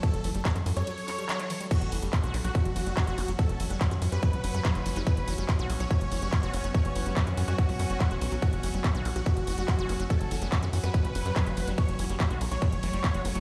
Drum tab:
CC |----------------|x---------------|----------------|----------------|
RD |x-x-x-x-x-x-x-x-|x-x-x-x-x-x-x-x-|x-x-x-x-x-x-x-x-|x-x-x-x-x-x-x-x-|
HH |xxoxxxoxxooxxxox|xxoxxxoxxxoxxxox|xxoxxxoxxxoxxxox|xxoxxxoxxxoxxxox|
CP |----x-----x-x---|----x---x---x---|----x-------x---|----x---x---x---|
BD |o---o-----------|o---o---o---o---|o---o---o---o---|o---o---o---o---|

CC |----------------|----------------|----------------|----------------|
RD |x-x-x-x-x-x-x-x-|x-x-x-x-x-x-x-x-|x-x-x-x-x-x-x-x-|x-x-x-x-x-x-x-x-|
HH |xxoxxxoxxooxxxox|xxoxxxoxxxoxxxox|xxoxxxoxxxoxxxox|xxoxxxoxxxoxxxox|
CP |----x-------x---|----x---x---x---|----x-------x---|----x---x---x---|
BD |o---o---o---o---|o---o---o---o---|o---o---o---o---|o---o---o---o---|